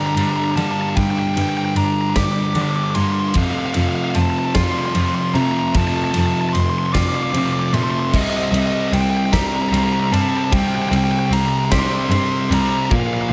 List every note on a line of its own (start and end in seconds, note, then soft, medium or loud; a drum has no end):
0.00 0.16 G2 medium
0.00 0.57 G2 medium
0.00 0.17 D3 medium
0.00 0.17 G3 medium
0.00 0.16 D4 medium
0.00 1.76 G4 medium
0.06 0.14 A#5 medium
0.15 0.23 G2 medium
0.15 0.56 G2 medium
0.15 0.56 D3 medium
0.15 0.56 G3 medium
0.15 1.75 D4 medium
0.15 0.21 A#5 medium
0.15 ride medium
0.21 0.29 A#5 medium
0.30 0.36 A#5 medium
0.36 0.44 A#5 medium
0.44 0.51 A#5 medium
0.51 0.55 A#5 medium
0.56 0.95 G2 medium
0.56 0.64 D3 medium
0.56 0.95 D3 medium
0.56 0.95 G3 medium
0.56 2.56 A#3 medium
0.56 0.64 A5 medium
0.56 ride medium
0.65 0.71 A5 medium
0.71 0.79 A5 medium
0.81 0.89 A5 medium
0.89 0.98 A5 medium
0.96 1.36 G2 medium
0.96 2.96 G2 medium
0.96 1.05 G2 medium
0.96 1.36 D3 medium
0.96 1.37 G3 medium
0.96 1.03 G5 medium
0.96 kick medium
0.96 ride medium
1.03 1.10 G5 medium
1.11 1.18 G5 medium
1.19 1.26 G5 medium
1.28 1.34 G5 medium
1.34 1.44 G2 medium
1.34 2.15 G2 medium
1.34 2.16 D3 medium
1.34 2.16 G3 medium
1.34 1.41 G5 medium
1.34 ride medium
1.42 1.49 G5 medium
1.49 1.57 G5 medium
1.57 1.65 G5 medium
1.65 1.73 G5 medium
1.75 1.83 G2 medium
1.75 2.54 D4 medium
1.75 1.85 A#5 medium
1.75 ride medium
1.85 1.93 A#5 medium
1.94 2.01 A#5 medium
2.01 2.09 A#5 medium
2.10 2.17 A#5 medium
2.15 2.24 G2 medium
2.15 2.55 G2 medium
2.15 2.56 D3 medium
2.15 2.56 G3 loud
2.15 3.35 G4 medium
2.15 2.23 D6 medium
2.15 kick medium
2.15 snare loud
2.15 ride medium
2.24 2.31 D6 medium
2.32 2.39 D6 medium
2.39 2.46 D6 medium
2.47 2.54 D6 medium
2.55 2.94 G2 medium
2.55 2.63 D3 medium
2.55 2.95 D3 medium
2.55 2.95 G3 medium
2.55 3.35 D4 medium
2.55 2.61 D6 medium
2.55 ride medium
2.62 2.69 D6 medium
2.70 2.75 D6 medium
2.76 2.83 D6 medium
2.84 2.90 D6 medium
2.90 2.95 D6 medium
2.95 3.03 G2 medium
2.95 3.33 G2 medium
2.95 3.34 D3 medium
2.95 3.34 G3 medium
2.95 3.35 A#3 medium
2.95 3.03 C6 medium
2.95 ride medium
3.04 3.12 C6 medium
3.12 3.19 C6 medium
3.20 3.28 C6 medium
3.28 3.37 C6 medium
3.34 3.43 F2 medium
3.34 3.75 F2 medium
3.34 5.35 F2 medium
3.34 3.74 C3 medium
3.34 3.76 F3 medium
3.34 3.43 F5 medium
3.34 kick medium
3.34 ride medium
3.43 3.50 F5 medium
3.51 3.58 F5 medium
3.59 3.65 F5 medium
3.66 3.73 F5 medium
3.74 3.83 F2 medium
3.74 4.54 F2 medium
3.74 4.54 C3 medium
3.74 4.55 F3 medium
3.74 3.80 F5 medium
3.74 ride medium
3.80 3.88 F5 medium
3.89 3.95 F5 medium
3.96 4.03 F5 medium
4.04 4.10 F5 medium
4.11 4.94 C4 medium
4.11 4.18 F5 medium
4.11 ride medium
4.15 4.23 F2 medium
4.15 4.22 A5 medium
4.22 4.30 A5 medium
4.30 4.38 A5 medium
4.39 4.45 A5 medium
4.45 4.52 A5 medium
4.54 4.63 F2 medium
4.54 4.93 F2 medium
4.54 4.94 C3 medium
4.54 4.94 F3 medium
4.54 6.54 F4 medium
4.54 4.63 C6 medium
4.54 kick medium
4.54 snare loud
4.54 ride medium
4.64 4.71 C6 medium
4.72 4.78 C6 medium
4.78 4.85 C6 medium
4.85 4.93 C6 medium
4.93 5.33 F2 medium
4.93 5.03 F2 medium
4.93 5.34 C3 medium
4.93 5.34 F3 medium
4.93 6.54 C4 medium
4.93 5.01 C6 medium
4.93 ride medium
5.01 5.07 C6 medium
5.08 5.15 C6 medium
5.15 5.22 C6 medium
5.22 5.29 C6 medium
5.30 5.42 C3 medium
5.30 5.34 C6 medium
5.34 5.74 F2 medium
5.34 5.74 C3 medium
5.34 5.74 F3 medium
5.34 7.34 A3 medium
5.34 5.42 A#5 loud
5.34 ride medium
5.42 5.50 A#5 medium
5.51 5.59 A#5 medium
5.59 5.67 A#5 medium
5.68 5.76 A#5 medium
5.74 5.82 F2 medium
5.74 7.73 F2 medium
5.74 6.13 F2 medium
5.74 6.14 C3 medium
5.74 6.13 F3 medium
5.74 5.80 A5 medium
5.74 kick medium
5.74 ride medium
5.80 5.87 A5 medium
5.88 5.95 A5 medium
5.96 6.04 A5 medium
6.04 6.11 A5 medium
6.11 6.93 F2 medium
6.11 6.93 C3 medium
6.11 6.94 F3 medium
6.11 6.19 A5 medium
6.11 ride medium
6.16 6.24 F2 medium
6.16 6.26 A5 medium
6.26 6.34 A5 medium
6.34 6.41 A5 medium
6.41 6.49 A5 medium
6.49 6.57 A5 medium
6.49 6.60 C6 medium
6.54 6.63 F2 medium
6.54 7.33 C4 medium
6.54 ride medium
6.60 6.68 C6 medium
6.70 6.78 C6 medium
6.78 6.86 C6 medium
6.86 6.93 C6 medium
6.93 7.33 F2 medium
6.93 7.03 F2 medium
6.93 7.34 C3 medium
6.93 7.34 F3 loud
6.93 8.13 F4 medium
6.93 7.00 D6 medium
6.93 kick medium
6.93 snare loud
6.93 ride medium
7.00 7.08 D6 medium
7.08 7.15 D6 medium
7.15 7.22 D6 medium
7.23 7.30 D6 medium
7.31 7.74 F2 medium
7.31 7.41 C3 medium
7.31 8.92 C4 medium
7.31 7.38 D6 medium
7.31 ride medium
7.35 7.74 C3 medium
7.35 7.74 F3 medium
7.35 7.46 D6 medium
7.46 7.52 D6 medium
7.53 7.59 D6 medium
7.59 7.67 D6 medium
7.69 7.81 A#2 medium
7.69 7.74 D6 medium
7.73 8.12 F2 medium
7.73 8.12 C3 medium
7.73 8.12 F3 medium
7.73 8.13 A3 medium
7.73 7.83 C6 medium
7.73 ride medium
7.84 7.90 C6 medium
7.91 7.99 C6 medium
7.99 8.07 C6 medium
8.07 8.15 C6 medium
8.13 8.21 C2 medium
8.13 10.12 C3 medium
8.13 8.54 C3 medium
8.13 8.54 G3 medium
8.13 8.55 C4 medium
8.13 8.21 D#5 medium
8.13 kick loud
8.13 crash medium
8.22 8.29 D#5 medium
8.30 8.37 D#5 medium
8.37 8.43 D#5 medium
8.43 8.51 D#5 medium
8.51 8.59 C2 medium
8.51 9.31 C3 medium
8.51 9.32 G3 medium
8.51 9.34 C4 medium
8.51 8.58 D#5 medium
8.51 ride medium
8.59 8.66 D#5 medium
8.66 8.73 D#5 medium
8.73 8.80 D#5 medium
8.81 8.88 D#5 medium
8.88 8.95 D#5 medium
8.92 9.00 C2 medium
8.92 9.72 C4 medium
8.92 9.00 G5 medium
8.92 ride medium
9.01 9.09 G5 medium
9.10 9.17 G5 medium
9.17 9.25 G5 medium
9.26 9.34 G5 medium
9.32 9.41 C2 medium
9.32 9.71 C3 medium
9.32 9.71 G3 loud
9.32 9.73 C4 medium
9.32 11.31 G4 medium
9.32 9.40 A#5 medium
9.32 kick medium
9.32 snare medium
9.32 ride medium
9.40 9.47 A#5 medium
9.47 9.55 A#5 medium
9.56 9.62 A#5 medium
9.62 9.69 A#5 medium
9.69 9.80 C2 medium
9.69 10.11 C3 medium
9.69 10.11 G3 medium
9.69 11.31 C4 medium
9.69 9.76 A#5 medium
9.73 10.12 C4 medium
9.73 ride medium
9.78 9.83 A#5 medium
9.84 9.91 A#5 medium
9.92 9.99 A#5 medium
10.00 10.07 A#5 medium
10.07 10.12 A#5 medium
10.12 10.20 G2 medium
10.12 10.50 C3 medium
10.12 10.51 G3 medium
10.12 12.11 G3 medium
10.12 10.52 C4 medium
10.12 10.20 A5 medium
10.12 ride medium
10.21 10.28 A5 medium
10.29 10.37 A5 medium
10.37 10.44 A5 medium
10.44 10.53 A5 medium
10.51 10.60 C2 medium
10.51 10.90 C3 medium
10.51 12.51 C3 medium
10.51 10.90 G3 loud
10.51 10.91 C4 loud
10.51 10.59 G5 medium
10.51 kick loud
10.51 ride medium
10.59 10.66 G5 medium
10.67 10.75 G5 medium
10.75 10.82 G5 medium
10.82 10.89 G5 medium
10.89 10.99 C2 medium
10.89 11.70 C3 medium
10.89 11.70 G3 medium
10.89 11.71 C4 loud
10.89 10.96 G5 medium
10.89 ride medium
10.96 11.04 G5 medium
11.04 11.11 G5 medium
11.11 11.19 G5 medium
11.19 11.25 G5 medium
11.26 11.33 G5 medium
11.30 11.38 C2 medium
11.30 12.11 C4 medium
11.30 11.40 A#5 medium
11.30 ride medium
11.40 11.48 A#5 medium
11.48 11.57 A#5 medium
11.57 11.64 A#5 medium
11.65 11.71 A#5 medium
11.71 11.80 C2 medium
11.71 12.09 C3 medium
11.71 12.10 G3 medium
11.71 12.10 C4 loud
11.71 12.91 G4 medium
11.71 11.79 C6 medium
11.71 kick medium
11.71 snare loud
11.71 ride medium
11.79 11.86 C6 medium
11.87 11.94 C6 medium
11.94 12.01 C6 medium
12.01 12.08 C6 medium
12.09 12.17 G2 medium
12.09 12.49 C3 medium
12.09 12.49 G3 medium
12.09 12.50 C4 medium
12.09 12.94 C4 medium
12.09 12.16 C6 medium
12.09 ride medium
12.16 12.23 C6 medium
12.24 12.31 C6 medium
12.32 12.39 C6 medium
12.40 12.47 C6 medium
12.50 12.58 C2 medium
12.50 12.88 C3 medium
12.50 12.88 G3 medium
12.50 12.91 G3 medium
12.50 12.91 C4 medium
12.50 12.61 A#5 loud
12.50 ride medium
12.61 12.69 A#5 medium
12.69 12.77 A#5 medium
12.78 12.85 A#5 medium
12.85 12.93 A#5 medium
12.90 13.29 A#2 medium
12.90 12.99 A#2 medium
12.90 13.33 A#2 medium
12.90 13.30 F3 loud
12.90 13.30 A#3 loud
12.90 12.99 F5 medium
12.90 kick loud
13.00 13.06 F5 medium
13.06 13.13 F5 medium
13.13 13.21 F5 medium
13.21 13.29 F5 medium
13.29 13.33 A#2 medium
13.29 13.33 F5 medium